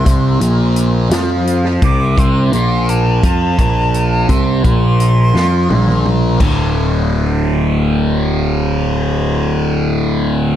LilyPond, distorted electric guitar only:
\new Staff \with { instrumentName = "Distorted electric guitar" } { \clef bass \time 6/8 \key d \minor \tempo 4. = 57 <c c'>8 <bes, bes>4 <f f'>4 <c c'>8 | <c c'>8 <bes, bes>4 <f f'>8 <bes, bes>4 | <c c'>8 <bes, bes>4 <f f'>8 <bes, bes>4 | <d, a, d>2.~ |
<d, a, d>2. | }